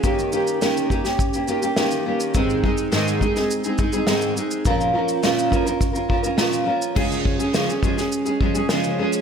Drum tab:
CC |----------------|----------------|----------------|x---------------|
SH |xxxxxxxxxxxxxx-x|xx-xxxxxxxxxxxxx|xx-xxxxxxx-xxx-x|-x-xxxxxxx-xxx-x|
SD |----o--o----o---|----o--o----o---|----o-------o---|----o--o----o---|
BD |o-----o-o-------|o-o---o---o-----|o-----o-o-o-----|o-o---o---o-----|